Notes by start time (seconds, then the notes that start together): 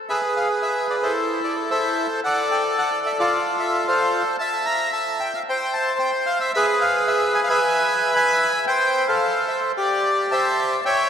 0.09 G#4 B4 E5
0.36 F5
0.62 E5
0.90 D5
1.03 E4 A4 C5
1.44 D5
1.70 A4 C5 E5
2.24 A4 D5 F#5
2.51 G5
2.78 F#5
3.06 E5
3.19 F4 A4 D5
3.60 E5
3.87 A4 C5 F5
4.39 E5 A5
4.66 A#5
4.93 A5
5.20 G5
5.34 F5
5.49 C5 G5
5.74 A5
5.99 G5
6.26 F5
6.41 E5
6.54 G#4 B4 E5
6.81 F5
7.07 E5
7.35 G#5
7.43 F5
7.49 B4 E5 G#5
8.14 E5 G#5 B5
8.67 C5 G5
9.08 A4 C5 F5
9.48 E5
9.77 G4 D5
10.31 C5 E5 A5
10.78 A5
10.85 C#5 E5 G5